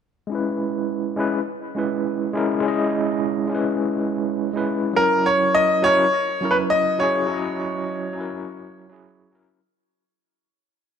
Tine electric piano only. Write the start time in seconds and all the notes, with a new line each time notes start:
0.27 G#3 C#4
0.32 E4 B4
1.16 G#3 C#4 E4 B4
1.75 G#3 C#4 E4 B4
2.33 G#3 C#4 E4 A#4
2.60 G#3 C#4
2.65 E4 D#5
3.47 G#3 C#4
3.52 E4 B4
4.53 G#3 C#4 E4 B4
4.93 F#3 C#4
4.98 E4 A#4
5.82 F#3 C#4 E4 A#4
6.41 F#3 C#4 E4 A#4
6.99 F#3 C#4 E4 G#4
7.26 F#3 C#4
7.32 E4 D#5
8.13 F#3 C#4
8.18 E4 A#4
8.89 F#3 C#4 E4 G#4
9.31 F#3 C#4 E4
9.35 A#4